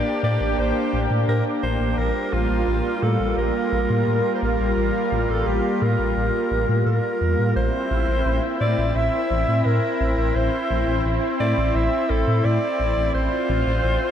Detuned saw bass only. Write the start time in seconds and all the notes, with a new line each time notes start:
0.23 A2
0.41 A1
0.58 A1
0.93 A1
1.11 A2
1.28 A2
1.63 A1
1.81 A1
1.98 A1
2.33 A1
2.50 A1
2.68 A1
3.03 A2
3.20 A1
3.37 A1
3.72 A1
3.90 A2
4.08 A2
4.42 A1
4.60 A1
4.77 A1
5.12 A1
5.29 A1
5.47 A1
5.82 A2
5.99 A1
6.17 A1
6.51 A1
6.69 A2
6.86 A2
7.21 E2
7.39 A2
7.56 A1
7.91 A1
8.08 A1
8.26 A1
8.61 A2
8.78 A1
8.96 A1
9.31 A1
9.48 A2
9.66 A2
10.01 A1
10.18 A1
10.35 A1
10.70 A1
10.88 A1
11.05 A1
11.40 A2
11.58 A1
11.75 A1
12.10 A1
12.27 A2
12.45 A2
12.80 A1
12.97 A1
13.15 A1
13.49 A1
13.67 A1
13.84 A1